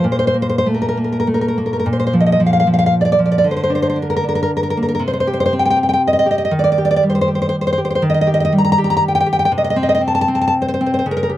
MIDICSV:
0, 0, Header, 1, 2, 480
1, 0, Start_track
1, 0, Tempo, 600000
1, 54, Time_signature, 3, 2, 24, 8
1, 1493, Tempo, 535236
1, 2933, Tempo, 516796
1, 4853, Tempo, 496278
1, 9173, Tempo, 519931
1, 10437, End_track
2, 0, Start_track
2, 0, Title_t, "Nylon-string guitar"
2, 0, Program_c, 0, 24
2, 31, Note_on_c, 0, 46, 58
2, 95, Note_on_c, 0, 72, 64
2, 142, Note_off_c, 0, 72, 0
2, 151, Note_on_c, 0, 72, 69
2, 208, Note_off_c, 0, 72, 0
2, 217, Note_on_c, 0, 72, 73
2, 273, Note_on_c, 0, 58, 48
2, 289, Note_off_c, 0, 72, 0
2, 337, Note_on_c, 0, 72, 73
2, 386, Note_off_c, 0, 72, 0
2, 395, Note_on_c, 0, 72, 72
2, 456, Note_off_c, 0, 72, 0
2, 466, Note_on_c, 0, 72, 75
2, 530, Note_on_c, 0, 57, 39
2, 534, Note_off_c, 0, 72, 0
2, 595, Note_on_c, 0, 70, 45
2, 644, Note_off_c, 0, 70, 0
2, 653, Note_on_c, 0, 70, 51
2, 699, Note_off_c, 0, 70, 0
2, 708, Note_on_c, 0, 70, 56
2, 770, Note_off_c, 0, 58, 0
2, 775, Note_off_c, 0, 70, 0
2, 779, Note_on_c, 0, 58, 39
2, 835, Note_on_c, 0, 70, 43
2, 890, Note_off_c, 0, 70, 0
2, 899, Note_on_c, 0, 70, 46
2, 948, Note_off_c, 0, 70, 0
2, 958, Note_on_c, 0, 70, 56
2, 1008, Note_off_c, 0, 57, 0
2, 1017, Note_on_c, 0, 57, 43
2, 1019, Note_off_c, 0, 70, 0
2, 1074, Note_on_c, 0, 70, 44
2, 1121, Note_off_c, 0, 70, 0
2, 1130, Note_on_c, 0, 70, 52
2, 1177, Note_off_c, 0, 70, 0
2, 1187, Note_on_c, 0, 70, 55
2, 1253, Note_off_c, 0, 58, 0
2, 1255, Note_off_c, 0, 70, 0
2, 1262, Note_on_c, 0, 58, 44
2, 1327, Note_on_c, 0, 70, 45
2, 1375, Note_off_c, 0, 70, 0
2, 1384, Note_on_c, 0, 70, 46
2, 1426, Note_off_c, 0, 70, 0
2, 1436, Note_on_c, 0, 70, 54
2, 1450, Note_off_c, 0, 46, 0
2, 1487, Note_on_c, 0, 46, 54
2, 1492, Note_off_c, 0, 57, 0
2, 1492, Note_off_c, 0, 70, 0
2, 1493, Note_off_c, 0, 58, 0
2, 1548, Note_on_c, 0, 72, 52
2, 1599, Note_off_c, 0, 72, 0
2, 1609, Note_on_c, 0, 72, 58
2, 1662, Note_off_c, 0, 72, 0
2, 1672, Note_on_c, 0, 72, 57
2, 1734, Note_on_c, 0, 53, 48
2, 1735, Note_off_c, 0, 72, 0
2, 1797, Note_on_c, 0, 75, 56
2, 1840, Note_off_c, 0, 75, 0
2, 1850, Note_on_c, 0, 75, 56
2, 1892, Note_off_c, 0, 75, 0
2, 1902, Note_on_c, 0, 75, 67
2, 1960, Note_off_c, 0, 53, 0
2, 1971, Note_off_c, 0, 75, 0
2, 1971, Note_on_c, 0, 53, 44
2, 2030, Note_on_c, 0, 77, 58
2, 2077, Note_off_c, 0, 77, 0
2, 2088, Note_on_c, 0, 77, 66
2, 2139, Note_off_c, 0, 77, 0
2, 2149, Note_on_c, 0, 77, 75
2, 2203, Note_off_c, 0, 53, 0
2, 2214, Note_on_c, 0, 53, 41
2, 2216, Note_off_c, 0, 77, 0
2, 2273, Note_on_c, 0, 77, 60
2, 2308, Note_off_c, 0, 77, 0
2, 2318, Note_on_c, 0, 77, 68
2, 2376, Note_off_c, 0, 77, 0
2, 2386, Note_on_c, 0, 77, 70
2, 2452, Note_off_c, 0, 77, 0
2, 2518, Note_on_c, 0, 74, 55
2, 2544, Note_off_c, 0, 74, 0
2, 2555, Note_on_c, 0, 74, 63
2, 2607, Note_off_c, 0, 74, 0
2, 2618, Note_on_c, 0, 74, 62
2, 2668, Note_off_c, 0, 53, 0
2, 2679, Note_on_c, 0, 53, 40
2, 2686, Note_off_c, 0, 74, 0
2, 2740, Note_on_c, 0, 74, 55
2, 2782, Note_off_c, 0, 74, 0
2, 2793, Note_on_c, 0, 74, 60
2, 2841, Note_off_c, 0, 74, 0
2, 2852, Note_on_c, 0, 74, 66
2, 2893, Note_off_c, 0, 46, 0
2, 2904, Note_on_c, 0, 50, 49
2, 2922, Note_off_c, 0, 74, 0
2, 2924, Note_off_c, 0, 53, 0
2, 2969, Note_on_c, 0, 72, 56
2, 3009, Note_off_c, 0, 72, 0
2, 3020, Note_on_c, 0, 72, 60
2, 3074, Note_off_c, 0, 72, 0
2, 3085, Note_on_c, 0, 72, 66
2, 3144, Note_on_c, 0, 62, 44
2, 3162, Note_off_c, 0, 72, 0
2, 3192, Note_on_c, 0, 72, 59
2, 3250, Note_off_c, 0, 72, 0
2, 3261, Note_on_c, 0, 72, 63
2, 3316, Note_off_c, 0, 72, 0
2, 3327, Note_on_c, 0, 72, 68
2, 3375, Note_off_c, 0, 62, 0
2, 3386, Note_on_c, 0, 62, 44
2, 3402, Note_off_c, 0, 72, 0
2, 3445, Note_on_c, 0, 70, 53
2, 3505, Note_off_c, 0, 70, 0
2, 3516, Note_on_c, 0, 70, 62
2, 3566, Note_off_c, 0, 70, 0
2, 3577, Note_on_c, 0, 70, 71
2, 3632, Note_off_c, 0, 62, 0
2, 3644, Note_on_c, 0, 62, 38
2, 3647, Note_off_c, 0, 70, 0
2, 3690, Note_on_c, 0, 70, 58
2, 3741, Note_off_c, 0, 70, 0
2, 3752, Note_on_c, 0, 70, 61
2, 3809, Note_off_c, 0, 70, 0
2, 3820, Note_on_c, 0, 70, 68
2, 3889, Note_off_c, 0, 70, 0
2, 3951, Note_on_c, 0, 70, 56
2, 3998, Note_off_c, 0, 70, 0
2, 4009, Note_on_c, 0, 70, 57
2, 4066, Note_off_c, 0, 70, 0
2, 4077, Note_on_c, 0, 70, 67
2, 4137, Note_off_c, 0, 70, 0
2, 4142, Note_on_c, 0, 58, 45
2, 4191, Note_on_c, 0, 70, 52
2, 4236, Note_off_c, 0, 70, 0
2, 4247, Note_on_c, 0, 70, 58
2, 4293, Note_off_c, 0, 70, 0
2, 4304, Note_on_c, 0, 70, 58
2, 4322, Note_off_c, 0, 50, 0
2, 4347, Note_on_c, 0, 48, 54
2, 4367, Note_off_c, 0, 62, 0
2, 4368, Note_off_c, 0, 70, 0
2, 4376, Note_off_c, 0, 58, 0
2, 4423, Note_on_c, 0, 72, 59
2, 4467, Note_off_c, 0, 72, 0
2, 4478, Note_on_c, 0, 72, 64
2, 4529, Note_off_c, 0, 72, 0
2, 4541, Note_on_c, 0, 72, 63
2, 4607, Note_off_c, 0, 72, 0
2, 4607, Note_on_c, 0, 67, 50
2, 4664, Note_on_c, 0, 72, 61
2, 4715, Note_off_c, 0, 72, 0
2, 4726, Note_on_c, 0, 72, 63
2, 4765, Note_off_c, 0, 72, 0
2, 4776, Note_on_c, 0, 72, 72
2, 4844, Note_off_c, 0, 72, 0
2, 4844, Note_on_c, 0, 60, 43
2, 4906, Note_on_c, 0, 79, 59
2, 4954, Note_off_c, 0, 79, 0
2, 4965, Note_on_c, 0, 79, 74
2, 5001, Note_off_c, 0, 79, 0
2, 5013, Note_on_c, 0, 79, 71
2, 5061, Note_off_c, 0, 67, 0
2, 5072, Note_on_c, 0, 67, 43
2, 5082, Note_off_c, 0, 79, 0
2, 5136, Note_on_c, 0, 79, 57
2, 5180, Note_off_c, 0, 79, 0
2, 5192, Note_on_c, 0, 79, 71
2, 5224, Note_off_c, 0, 79, 0
2, 5236, Note_on_c, 0, 79, 69
2, 5311, Note_off_c, 0, 79, 0
2, 5371, Note_on_c, 0, 75, 61
2, 5413, Note_off_c, 0, 75, 0
2, 5425, Note_on_c, 0, 75, 71
2, 5470, Note_off_c, 0, 75, 0
2, 5482, Note_on_c, 0, 75, 71
2, 5538, Note_off_c, 0, 67, 0
2, 5549, Note_on_c, 0, 67, 49
2, 5553, Note_off_c, 0, 75, 0
2, 5559, Note_off_c, 0, 60, 0
2, 5596, Note_on_c, 0, 75, 64
2, 5655, Note_off_c, 0, 75, 0
2, 5667, Note_on_c, 0, 75, 61
2, 5720, Note_off_c, 0, 75, 0
2, 5732, Note_on_c, 0, 75, 71
2, 5752, Note_off_c, 0, 48, 0
2, 5795, Note_on_c, 0, 51, 56
2, 5798, Note_off_c, 0, 67, 0
2, 5799, Note_off_c, 0, 75, 0
2, 5870, Note_on_c, 0, 74, 65
2, 5904, Note_off_c, 0, 74, 0
2, 5916, Note_on_c, 0, 74, 72
2, 5981, Note_off_c, 0, 74, 0
2, 5994, Note_on_c, 0, 74, 69
2, 6051, Note_off_c, 0, 74, 0
2, 6054, Note_on_c, 0, 67, 52
2, 6120, Note_on_c, 0, 74, 66
2, 6164, Note_off_c, 0, 74, 0
2, 6176, Note_on_c, 0, 74, 72
2, 6219, Note_off_c, 0, 74, 0
2, 6231, Note_on_c, 0, 74, 78
2, 6292, Note_off_c, 0, 74, 0
2, 6296, Note_on_c, 0, 55, 44
2, 6359, Note_on_c, 0, 72, 52
2, 6399, Note_off_c, 0, 72, 0
2, 6411, Note_on_c, 0, 72, 61
2, 6461, Note_off_c, 0, 72, 0
2, 6472, Note_on_c, 0, 72, 66
2, 6524, Note_off_c, 0, 67, 0
2, 6536, Note_on_c, 0, 67, 42
2, 6539, Note_off_c, 0, 72, 0
2, 6606, Note_on_c, 0, 72, 57
2, 6658, Note_off_c, 0, 72, 0
2, 6670, Note_on_c, 0, 72, 61
2, 6727, Note_off_c, 0, 72, 0
2, 6739, Note_on_c, 0, 72, 64
2, 6798, Note_off_c, 0, 72, 0
2, 6859, Note_on_c, 0, 72, 60
2, 6902, Note_off_c, 0, 72, 0
2, 6913, Note_on_c, 0, 72, 61
2, 6957, Note_off_c, 0, 72, 0
2, 6968, Note_on_c, 0, 72, 67
2, 7007, Note_off_c, 0, 67, 0
2, 7019, Note_on_c, 0, 67, 52
2, 7031, Note_off_c, 0, 72, 0
2, 7037, Note_off_c, 0, 55, 0
2, 7086, Note_on_c, 0, 72, 58
2, 7129, Note_off_c, 0, 72, 0
2, 7141, Note_on_c, 0, 72, 58
2, 7176, Note_off_c, 0, 72, 0
2, 7188, Note_on_c, 0, 72, 67
2, 7226, Note_off_c, 0, 51, 0
2, 7255, Note_on_c, 0, 51, 64
2, 7258, Note_off_c, 0, 72, 0
2, 7262, Note_off_c, 0, 67, 0
2, 7327, Note_on_c, 0, 75, 66
2, 7360, Note_off_c, 0, 75, 0
2, 7372, Note_on_c, 0, 75, 66
2, 7427, Note_off_c, 0, 75, 0
2, 7438, Note_on_c, 0, 75, 75
2, 7493, Note_on_c, 0, 67, 55
2, 7504, Note_off_c, 0, 75, 0
2, 7561, Note_on_c, 0, 75, 75
2, 7611, Note_off_c, 0, 75, 0
2, 7622, Note_on_c, 0, 75, 71
2, 7654, Note_off_c, 0, 75, 0
2, 7665, Note_on_c, 0, 75, 75
2, 7738, Note_off_c, 0, 75, 0
2, 7740, Note_on_c, 0, 55, 47
2, 7797, Note_on_c, 0, 82, 66
2, 7845, Note_off_c, 0, 82, 0
2, 7857, Note_on_c, 0, 82, 81
2, 7917, Note_off_c, 0, 82, 0
2, 7929, Note_on_c, 0, 82, 87
2, 7976, Note_off_c, 0, 67, 0
2, 7987, Note_on_c, 0, 67, 48
2, 7989, Note_off_c, 0, 82, 0
2, 8047, Note_on_c, 0, 82, 67
2, 8093, Note_off_c, 0, 82, 0
2, 8104, Note_on_c, 0, 82, 76
2, 8156, Note_off_c, 0, 82, 0
2, 8168, Note_on_c, 0, 82, 80
2, 8226, Note_off_c, 0, 82, 0
2, 8281, Note_on_c, 0, 79, 65
2, 8333, Note_off_c, 0, 79, 0
2, 8345, Note_on_c, 0, 79, 73
2, 8387, Note_off_c, 0, 79, 0
2, 8399, Note_on_c, 0, 79, 83
2, 8444, Note_off_c, 0, 67, 0
2, 8452, Note_off_c, 0, 55, 0
2, 8455, Note_on_c, 0, 67, 53
2, 8457, Note_off_c, 0, 79, 0
2, 8516, Note_on_c, 0, 79, 70
2, 8568, Note_off_c, 0, 79, 0
2, 8579, Note_on_c, 0, 79, 68
2, 8626, Note_off_c, 0, 79, 0
2, 8638, Note_on_c, 0, 79, 78
2, 8643, Note_off_c, 0, 51, 0
2, 8688, Note_off_c, 0, 67, 0
2, 8693, Note_off_c, 0, 79, 0
2, 8701, Note_on_c, 0, 48, 61
2, 8759, Note_on_c, 0, 75, 65
2, 8812, Note_off_c, 0, 75, 0
2, 8823, Note_on_c, 0, 75, 71
2, 8868, Note_off_c, 0, 75, 0
2, 8880, Note_on_c, 0, 75, 75
2, 8933, Note_off_c, 0, 75, 0
2, 8939, Note_on_c, 0, 60, 53
2, 9003, Note_on_c, 0, 75, 72
2, 9049, Note_off_c, 0, 75, 0
2, 9061, Note_on_c, 0, 75, 75
2, 9104, Note_off_c, 0, 75, 0
2, 9116, Note_on_c, 0, 75, 83
2, 9166, Note_off_c, 0, 60, 0
2, 9174, Note_off_c, 0, 75, 0
2, 9177, Note_on_c, 0, 60, 43
2, 9239, Note_on_c, 0, 81, 63
2, 9294, Note_off_c, 0, 81, 0
2, 9305, Note_on_c, 0, 81, 79
2, 9353, Note_off_c, 0, 81, 0
2, 9364, Note_on_c, 0, 81, 83
2, 9416, Note_off_c, 0, 60, 0
2, 9418, Note_off_c, 0, 81, 0
2, 9427, Note_on_c, 0, 60, 46
2, 9491, Note_on_c, 0, 81, 59
2, 9540, Note_off_c, 0, 81, 0
2, 9551, Note_on_c, 0, 81, 67
2, 9596, Note_off_c, 0, 81, 0
2, 9607, Note_on_c, 0, 81, 71
2, 9664, Note_off_c, 0, 81, 0
2, 9737, Note_on_c, 0, 72, 61
2, 9790, Note_off_c, 0, 72, 0
2, 9800, Note_on_c, 0, 72, 64
2, 9838, Note_off_c, 0, 72, 0
2, 9849, Note_on_c, 0, 72, 64
2, 9902, Note_off_c, 0, 60, 0
2, 9906, Note_off_c, 0, 72, 0
2, 9913, Note_on_c, 0, 60, 49
2, 9965, Note_on_c, 0, 72, 59
2, 10024, Note_off_c, 0, 72, 0
2, 10034, Note_on_c, 0, 72, 62
2, 10069, Note_off_c, 0, 72, 0
2, 10080, Note_on_c, 0, 72, 63
2, 10109, Note_off_c, 0, 48, 0
2, 10140, Note_off_c, 0, 72, 0
2, 10146, Note_off_c, 0, 60, 0
2, 10146, Note_on_c, 0, 49, 58
2, 10195, Note_on_c, 0, 70, 61
2, 10234, Note_off_c, 0, 70, 0
2, 10246, Note_on_c, 0, 70, 70
2, 10292, Note_off_c, 0, 70, 0
2, 10303, Note_on_c, 0, 70, 69
2, 10364, Note_on_c, 0, 67, 51
2, 10367, Note_off_c, 0, 70, 0
2, 10437, Note_off_c, 0, 49, 0
2, 10437, Note_off_c, 0, 67, 0
2, 10437, End_track
0, 0, End_of_file